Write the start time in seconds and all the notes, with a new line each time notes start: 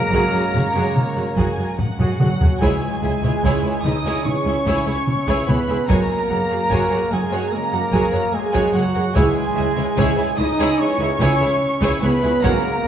Already playing: C#3 G#3 A#3 A#4 A#5
0.11 F#1 F#2 F#4 G#4 C#5, taiko
0.33 F#2 F#4 G#4
0.54 F#1 F#2 F#4 G#4, taiko mid
0.75 F#2 F#4 G#4
0.96 taiko mid
1.17 F#2 F#4 G#4
1.36 F#1 F#2 F#4 G#4 G#5, taiko
1.58 F#2 F#4 G#4
1.78 F#5, taiko low-mid
1.99 F#2 F#4 G#4, taiko low-mid
2.19 F#1 F#2 F#3 F#4 G#4 F#5, taiko mid
2.41 F#2 F#4 G#4, taiko low
2.60 C#2 E3 G#3 E4 G#4 C#5 G#5, taiko
3.02 C#2 E4 G#4 E5
3.22 C#2 E4 G#4 C#5, taiko mid
3.43 C#2 E4 G#4 C#5 G#5, taiko
3.63 C#2 E4 G#4 C#5
3.83 C#2 D#4 E4 G#4 D#5 E5 D#6, taiko mid
4.04 C#2 E4 G#4 C#5 G#5
4.24 E3 G#3 C#4 C#5 C#6, taiko mid
4.45 C#2 E4 G#4 E5
4.66 C#2 E4 G#4 C#5 G#5, taiko
4.86 C#2 E4 G#4 C#5
5.08 taiko mid
5.27 C#2 E4 G#4 C#5 G#5, taiko
5.47 C#2 B3 E4 G#4 B4 C#5 B5, taiko mid
5.67 C#2 E4 G#4 E5
5.88 F#1 F#2 C#3 G#3 A#3 F#4 G#4 A#4 C#5 G#5 A#5, taiko
6.29 F#1 F#2 F#4 G#4 A#4 F#5
6.49 F#2 F#4 G#4 C#5
6.69 F#1 F#2 F#4 G#4 C#5 G#5, taiko
6.90 F#2 F#4 G#4 C#5
7.11 F#1 F#2 G#3 F#4 G#4 A#4 F#5 G#5
7.31 F#2 F#4 G#4 C#5 G#5
7.51 C#3 G#3 A#3 A#4 A#5
7.72 F#2 F#4 G#4 A#4 F#5
7.91 F#1 F#2 F#4 G#4 C#5 G#5, taiko
8.12 F#2 F#4 G#4 C#5
8.34 G#3 G#4 G#5
8.53 F#2 F#4 G#4 C#5 G#5, taiko
8.73 F#1 F#2 F#3 F#4 G#4 C#5 F#5
8.94 F#2 F#4 G#4 A#4 F#5
9.14 C#2 E3 G#3 E4 G#4 C#5 G#5, taiko
9.55 C#2 E4 G#4 E5
9.76 C#2 E4 G#4 C#5
9.96 C#2 E4 G#4 C#5 G#5, taiko
10.17 C#2 E4 G#4 C#5
10.37 C#2 D#4 E4 G#4 D#5 E5 D#6
10.59 C#2 E4 G#4 C#5 G#5
10.79 E3 G#3 C#4 C#5 C#6
10.99 C#2 E4 G#4 E5
11.20 C#2 E4 G#4 C#5 G#5, taiko
11.41 C#2 E4 G#4 C#5
11.81 C#2 E4 G#4 C#5 G#5, taiko
12.01 C#2 B3 E4 G#4 B4 C#5 B5
12.22 C#2 E4 G#4 E5
12.42 F#1 F#2 C#3 G#3 A#3 F#4 G#4 A#4 C#5 F#5 A#5, taiko
12.85 C#5